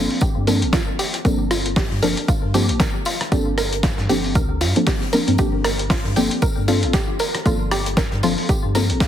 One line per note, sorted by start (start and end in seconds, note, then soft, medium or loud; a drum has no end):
0.11 open hi-hat medium
0.21 0.30 G4 medium
0.21 kick loud
0.21 closed hi-hat medium
0.21 tambourine medium
0.36 0.64 G2 loud
0.47 0.60 F3 medium
0.47 0.60 A#3 medium
0.47 0.60 C4 medium
0.47 0.60 D4 medium
0.47 0.60 A4 loud
0.47 0.51 A#4 medium
0.47 snare soft
0.47 open hi-hat loud
0.47 tambourine medium
0.62 0.71 G1 medium
0.62 closed hi-hat medium
0.73 0.82 F4 medium
0.73 kick medium
0.73 snare loud
0.73 closed hi-hat soft
0.73 tambourine medium
0.99 1.08 G4 medium
0.99 open hi-hat loud
0.99 tambourine medium
1.14 snare soft
1.14 closed hi-hat medium
1.25 1.87 G1 medium
1.25 1.44 F3 medium
1.25 1.44 A#3 medium
1.25 1.44 C4 medium
1.25 1.44 D4 medium
1.25 1.44 A4 loud
1.25 1.29 A#4 medium
1.25 kick loud
1.25 closed hi-hat soft
1.25 tambourine medium
1.51 1.60 F4 medium
1.51 cross-stick medium
1.51 open hi-hat loud
1.51 tambourine medium
1.66 closed hi-hat medium
1.76 1.86 G4 medium
1.76 kick loud
1.76 snare loud
1.76 closed hi-hat soft
1.76 open hi-hat medium
1.91 2.01 G2 medium
1.91 snare soft
2.02 2.15 G1 loud
2.02 2.15 F3 medium
2.02 2.15 A#3 medium
2.02 2.15 C4 medium
2.02 2.15 D4 medium
2.02 2.15 A4 medium
2.02 2.06 A#4 medium
2.02 open hi-hat loud
2.02 tambourine medium
2.17 closed hi-hat medium
2.28 2.37 F4 medium
2.28 kick loud
2.28 closed hi-hat soft
2.28 tambourine medium
2.43 2.71 G2 medium
2.54 2.67 F3 medium
2.54 2.67 A#3 medium
2.54 2.67 C4 medium
2.54 2.67 D4 medium
2.54 2.63 G4 medium
2.54 2.67 A4 loud
2.54 open hi-hat loud
2.54 tambourine medium
2.69 2.78 G1 medium
2.69 closed hi-hat medium
2.80 2.84 A#4 medium
2.80 kick loud
2.80 snare loud
2.80 closed hi-hat soft
2.80 tambourine medium
3.05 3.15 F4 medium
3.05 open hi-hat loud
3.05 tambourine medium
3.21 cross-stick medium
3.21 snare soft
3.21 closed hi-hat medium
3.32 3.94 G1 loud
3.32 3.51 F3 medium
3.32 3.51 A#3 medium
3.32 3.51 C4 medium
3.32 3.51 D4 medium
3.32 3.41 G4 medium
3.32 3.51 A4 loud
3.32 kick loud
3.32 closed hi-hat soft
3.32 tambourine medium
3.58 3.61 A#4 medium
3.58 cross-stick medium
3.58 open hi-hat loud
3.58 tambourine medium
3.73 closed hi-hat medium
3.73 closed hi-hat soft
3.83 3.92 F4 medium
3.83 kick loud
3.83 snare loud
3.83 closed hi-hat soft
3.83 tambourine medium
3.98 4.07 G2 medium
3.98 snare soft
4.09 4.37 G1 loud
4.09 4.22 F3 medium
4.09 4.22 A#3 medium
4.09 4.22 C4 medium
4.09 4.22 D4 medium
4.09 4.18 G4 medium
4.09 4.22 A4 medium
4.09 open hi-hat loud
4.09 tambourine medium
4.24 open hi-hat medium
4.35 4.63 D2 medium
4.35 4.39 A#4 medium
4.35 kick loud
4.35 closed hi-hat soft
4.35 tambourine medium
4.61 4.73 G2 medium
4.61 4.70 F4 medium
4.61 snare soft
4.61 open hi-hat loud
4.61 tambourine medium
4.76 4.85 F3 medium
4.76 4.85 A#3 medium
4.76 4.85 C4 medium
4.76 4.85 D4 medium
4.76 4.85 A4 medium
4.76 closed hi-hat medium
4.87 4.96 G4 medium
4.87 kick loud
4.87 snare loud
4.87 closed hi-hat soft
4.87 open hi-hat medium
5.01 snare soft
5.13 5.25 F3 medium
5.13 5.25 A#3 medium
5.13 5.26 C4 medium
5.13 5.26 D4 medium
5.13 5.16 A#4 medium
5.13 5.26 A#4 medium
5.13 open hi-hat loud
5.13 tambourine medium
5.28 5.37 G2 loud
5.28 5.37 F3 medium
5.28 5.37 A#3 medium
5.28 5.37 C4 medium
5.28 5.37 D4 medium
5.28 5.37 A#4 loud
5.28 closed hi-hat medium
5.38 6.01 G1 loud
5.38 5.58 F3 medium
5.38 5.58 A#3 medium
5.38 5.58 C4 medium
5.38 5.58 D4 medium
5.38 5.48 G4 medium
5.38 5.58 A4 loud
5.38 kick loud
5.38 closed hi-hat soft
5.38 tambourine medium
5.64 5.68 A#4 medium
5.64 cross-stick medium
5.64 open hi-hat loud
5.64 tambourine medium
5.79 closed hi-hat medium
5.90 5.99 F4 medium
5.90 kick loud
5.90 snare loud
5.90 closed hi-hat soft
5.90 open hi-hat medium
6.05 6.14 G2 medium
6.05 snare soft
6.16 6.29 G1 loud
6.16 6.29 F3 medium
6.16 6.29 A#3 medium
6.16 6.29 C4 medium
6.16 6.29 D4 medium
6.16 6.25 G4 medium
6.16 6.29 A4 medium
6.16 open hi-hat loud
6.16 tambourine medium
6.31 closed hi-hat medium
6.42 6.46 A#4 medium
6.42 kick loud
6.42 closed hi-hat soft
6.42 tambourine medium
6.57 6.84 G2 medium
6.68 6.81 F3 medium
6.68 6.81 A#3 medium
6.68 6.81 C4 medium
6.68 6.81 D4 medium
6.68 6.77 F4 medium
6.68 6.81 A4 loud
6.68 open hi-hat loud
6.68 tambourine medium
6.83 6.92 G1 medium
6.83 closed hi-hat medium
6.93 7.03 G4 medium
6.93 kick loud
6.93 snare loud
6.93 closed hi-hat soft
6.93 tambourine medium
7.19 7.23 A#4 medium
7.19 open hi-hat loud
7.19 tambourine medium
7.35 cross-stick medium
7.35 snare soft
7.35 closed hi-hat medium
7.45 8.08 G1 loud
7.45 7.64 F3 medium
7.45 7.65 A#3 medium
7.45 7.65 C4 medium
7.45 7.65 D4 medium
7.45 7.55 F4 medium
7.45 7.65 A4 loud
7.45 kick loud
7.45 closed hi-hat medium
7.45 tambourine medium
7.71 7.80 G4 medium
7.71 cross-stick medium
7.71 open hi-hat loud
7.71 tambourine medium
7.86 closed hi-hat soft
7.86 closed hi-hat medium
7.97 8.01 A#4 medium
7.97 kick loud
7.97 snare loud
7.97 closed hi-hat medium
7.97 tambourine medium
8.12 8.21 G2 medium
8.12 snare soft
8.23 8.36 G1 loud
8.23 8.36 F3 medium
8.23 8.36 A#3 medium
8.23 8.36 C4 medium
8.23 8.36 D4 medium
8.23 8.32 F4 medium
8.23 8.36 A4 medium
8.23 open hi-hat loud
8.23 tambourine medium
8.38 open hi-hat medium
8.49 8.58 G4 medium
8.49 kick loud
8.49 closed hi-hat medium
8.49 tambourine medium
8.64 8.91 G2 medium
8.75 8.88 F3 medium
8.75 8.88 A#3 medium
8.75 8.88 C4 medium
8.75 8.88 D4 medium
8.75 8.88 A4 loud
8.75 8.79 A#4 medium
8.75 snare soft
8.75 open hi-hat medium
8.75 tambourine medium
8.90 8.99 G1 medium
8.90 closed hi-hat medium
9.00 9.08 F4 medium
9.00 kick medium
9.00 snare loud
9.00 closed hi-hat soft
9.00 tambourine medium